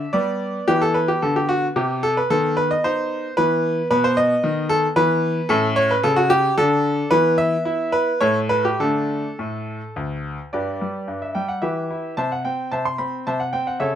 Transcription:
grand piano
Already playing: E5
0.13 G3 B3 D5
0.68 E3 B3 G4
0.82 A4
0.94 B4
1.08 G4
1.22 D3 A4
1.36 G4
1.49 F#4
1.76 C3 G4
2.03 A4
2.17 B4
2.30 D#3 B3 A4
2.57 B4
2.71 D#5
2.84 D#4 C5
3.37 E3 B3 B4
3.91 B2 B3 B4
4.04 C5
4.17 D#5
4.44 D#3
4.69 A4
4.96 E3 B3 B4
5.49 A2 C#4 A4
5.76 C#5
5.91 B4
6.03 C#3 A4
6.16 F#4
6.30 G4
6.58 D3 D4 A4
7.11 E3 B3 B4
7.38 E5
7.65 E4
7.92 B4
8.21 A2 A3 C#5
8.49 B4
8.65 G4
8.80 D3 A3 D4 A4
9.39 A2
9.96 D2
10.53 G2 G4 B4 D5
10.81 G3
11.08 G2
11.22 E5
11.35 G3 G5
11.48 F#5
11.62 E3 G4 B4 E5
11.91 E4
12.17 C3 C5 E5 A5
12.32 F#5
12.45 C4 G5
12.72 C3 C5 E5 A5
12.85 C6
12.98 C4 B5
13.27 C3 C5 E5 A5
13.40 F#5
13.53 C4 G5
13.67 F#5
13.80 C#3 A4 C#5 E5

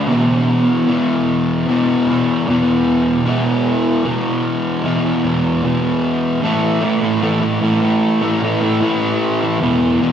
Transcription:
distorted electric guitar
Already playing: D4
0.08 E2 B2 E3
0.87 E2 B2 E3
1.67 E2 B2 E3
2.07 B2 E3
2.47 E2 B2 E3
3.26 E2 B2 E3
4.04 E2 B2 E3
4.84 E2 B2 E3
5.24 B2 E3
5.63 E2 B2 E3
6.42 A2 E3 A3
6.81 A2 E3 A3
7.01 E3 A3
7.21 A2 E3 A3
7.41 E3 A3
7.61 A2 E3 A3
7.80 E3 A3
8.21 E3 A3
8.41 A2 E3 A3
8.60 E3 A3
8.81 A2 E3 A3
9.40 E3 A3
9.60 E2 B2 E3
10.00 E2 B2 E3

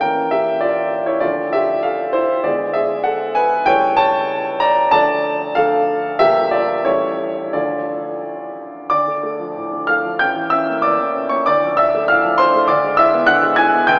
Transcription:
grand piano
0.01 A1 E3 A#3 C#4 A#4 G5
0.31 G4 E5
0.61 F4 D5
1.06 E4 C#5
1.20 D2 F3 A3 D4 F4 D5
1.53 G4 E5
1.83 A4 F5
2.13 E4 C5
2.44 D2 G#3 B3 E4 G#4 D5
2.73 G#4 E5
3.04 A4 F#5
3.35 B4 G#5
3.66 C#2 G3 A3 E4 C#5 G5
3.97 C#5 A5
4.60 D5 A#5
4.91 D2 F3 A3 D4 D5 A5
5.55 D2 F3 A3 D4 A4 F5
6.19 G1 F3 G3 A#3 G4 E5
6.51 F4 D5
6.84 A1 E3 G3 A3 E4 C#5
7.53 D2 D3 F3 A3 F4 D5
8.90 D2 D5 D6
9.07 D3
9.23 A3
9.40 F3
9.56 A2
9.73 D3
9.87 A3 F5 F6
10.05 F3
10.19 A1 G5 G6
10.36 E3
10.50 C#4 E5 E6
10.68 A#3
10.82 E2 D5 D6
10.99 E3
11.14 C#4
11.29 A#3 C#5 C#6
11.46 D2 D5 D6
11.64 F3
11.77 D4 E5 E6
11.94 A3
12.08 A2 F5 F6
12.24 F3
12.38 D4 C5 C6
12.54 A3
12.68 D2 D5 D6
12.84 G#3
12.97 E4 E5 E6
13.13 B3
13.27 D3 F#5 F#6
13.43 G#3
13.56 E4 G#5 G#6
13.73 B3
13.87 C#2 G5 G6

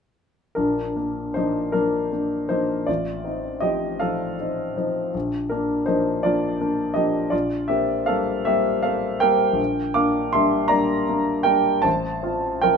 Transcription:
grand piano
0.55 A#1 D4 A#4
0.96 A#3 D4
1.34 F3 A#3 D4 D#4 C5
1.72 F3 A#3 D4 A#4
2.12 A#3 D4
2.49 F3 A#3 D4 D#4 C5
2.86 A1 F4 D5
3.24 C4 D#4
3.60 F3 C4 D#4 G4 D#5
4.00 F3 C4 D#4 A4 F5
4.40 C4 D#4
4.77 F3 C4 D#4
5.14 A#1
5.50 A#3 D4 A#4
5.86 F3 A#3 D4 D#4 C5
6.23 F3 A#3 D4 F4 D5
6.61 A#3 D4
6.94 F3 A#3 D4 G4 D#5
7.30 A#1 F4 D5
7.68 A#3 C4 G4 E5
8.06 G3 A#3 C4 A4 F5
8.45 G3 A#3 C4 G4 E5
8.83 A#3 C4 A4 F5
9.20 G3 A#3 C4 A#4 G5
9.53 A#1
9.94 A#3 D4 F5 D6
10.33 G3 A#3 D4 E5 C6
10.68 G3 A#3 D4 D5 A#5
11.09 A#3 D4
11.43 G3 A#3 D4 A#4 G5
11.82 A1 C5 A5
12.23 C4 F4
12.61 F3 C4 F4 A#4 G5

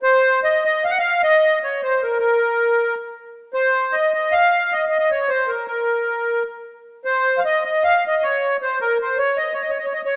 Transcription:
accordion
0.03 C5
0.44 D#5
0.65 D#5
0.85 F5
0.90 F#5
0.99 F5
1.24 D#5
1.64 C#5
1.83 C5
2.03 A#4
2.20 A#4
3.54 C5
3.93 D#5
4.14 D#5
4.32 F5
4.72 D#5
4.89 D#5
4.99 D#5
5.11 C#5
5.29 C5
5.48 A#4
5.68 A#4
7.05 C5
7.38 F5
7.45 D#5
7.65 D#5
7.84 F5
8.07 D#5
8.23 C#5
8.62 C5
8.81 A#4
9.01 C5
9.17 C#5
9.37 D#5
9.53 C#5
9.62 D#5
9.70 C#5
9.78 D#5
9.85 C#5
9.93 D#5
10.05 C#5

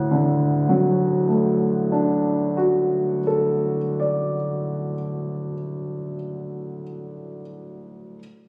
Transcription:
grand piano
Already playing: D2 A2 F#5
0.11 D3
0.69 F#3
1.28 A3
1.92 D4
2.57 F#4
3.27 A4
4.00 D5

